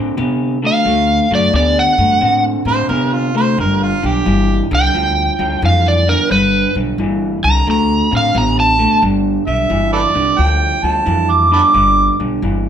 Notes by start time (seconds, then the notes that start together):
Already playing: A2 D3 C4
0.17 C3 D3 B3
0.63 D3 A3 F5
0.85 D2 D3 A3
1.31 F#2 D3 A3
1.35 D5
1.53 D2 D3 B3 D5
1.79 F#5
1.98 G2 D3 A3
2.21 A2 D3 C4
2.65 A2 D3 C4 C5
2.89 C3 D3 B3 A#4
3.13 F4
3.35 D3 A3 C5
3.58 G1 G2 D3 A#4
3.83 F4
4.03 B1 G2 D3 G4
4.26 G1 G2 E3
4.71 C2 G2 D3 G5
4.94 D2 G2 F3
5.39 D2 G2 F3
5.62 F2 G2 E3 F5
5.88 D5
6.07 G2 D3 A#4
6.30 G1 G2 D3 B4
6.75 B1 G2 D3
6.98 G1 G2 E3
7.44 C2 G2 D3 A#5
7.67 D2 D3 A3 A#5
8.11 A2 D3 C4
8.17 F5
8.35 A1 D3 B3 A#5
8.60 A5
8.79 D3 A3
9.02 G1 G2 D3
9.47 B1 G2 D3 E5
9.70 G1 G2 E3
9.93 A4 B4 D5
10.15 C2 G2 D3
10.37 D2 G2 F3 G5
10.83 D2 G2 F3 A5
11.06 F2 G2 E3
11.31 D6
11.51 G2 D3 A5 B5 D6
11.74 G1 G2 D3
12.20 B1 G2 D3
12.42 G1 G2 E3